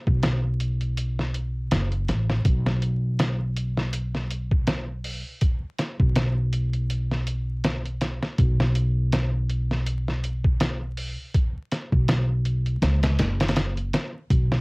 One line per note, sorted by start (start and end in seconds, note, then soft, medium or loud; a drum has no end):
0.07 1.72 B1 medium
0.07 kick medium
0.23 snare loud
0.23 closed hi-hat medium
0.60 closed hi-hat medium
0.81 closed hi-hat soft
0.97 closed hi-hat medium
1.19 snare soft
1.34 closed hi-hat medium
1.71 2.05 F#1 medium
1.71 snare loud
1.71 closed hi-hat medium
1.92 closed hi-hat soft
2.08 2.42 A1 medium
2.08 snare soft
2.08 closed hi-hat medium
2.30 snare soft
2.45 5.21 B1 medium
2.45 kick medium
2.45 closed hi-hat medium
2.66 snare medium
2.82 closed hi-hat medium
3.19 snare loud
3.19 closed hi-hat medium
3.56 closed hi-hat medium
3.77 snare soft
3.93 closed hi-hat medium
4.15 snare soft
4.31 closed hi-hat medium
4.51 kick medium
4.67 snare loud
4.67 closed hi-hat medium
5.04 open hi-hat medium
5.41 kick medium
5.41 closed hi-hat medium
5.79 snare soft
5.79 closed hi-hat medium
6.00 8.18 B1 medium
6.00 kick medium
6.16 snare loud
6.16 closed hi-hat medium
6.53 closed hi-hat medium
6.73 closed hi-hat soft
6.90 closed hi-hat medium
7.11 snare soft
7.27 closed hi-hat medium
7.64 snare loud
7.64 closed hi-hat medium
7.86 closed hi-hat soft
8.01 snare soft
8.01 closed hi-hat medium
8.23 snare soft
8.38 11.14 B1 medium
8.38 kick loud
8.38 closed hi-hat medium
8.60 snare medium
8.75 closed hi-hat medium
9.12 snare loud
9.12 closed hi-hat medium
9.50 closed hi-hat medium
9.71 snare soft
9.86 closed hi-hat medium
10.08 snare soft
10.24 closed hi-hat medium
10.44 kick medium
10.60 snare loud
10.60 closed hi-hat medium
10.97 open hi-hat medium
11.34 kick loud
11.34 closed hi-hat medium
11.72 snare soft
11.72 closed hi-hat medium
11.92 12.81 B1 medium
11.92 kick medium
12.08 snare loud
12.08 closed hi-hat medium
12.45 closed hi-hat medium
12.66 closed hi-hat soft
12.82 13.15 C#2 medium
12.82 snare loud
12.82 closed hi-hat medium
13.03 snare loud
13.03 closed hi-hat medium
13.19 13.91 F#1 medium
13.19 snare loud
13.19 closed hi-hat medium
13.40 snare medium
13.40 closed hi-hat medium
13.48 snare medium
13.48 closed hi-hat medium
13.56 snare loud
13.56 closed hi-hat medium
13.77 closed hi-hat soft
13.93 snare loud
13.93 closed hi-hat medium
14.30 14.61 B1 medium
14.30 kick loud
14.30 closed hi-hat medium
14.52 snare soft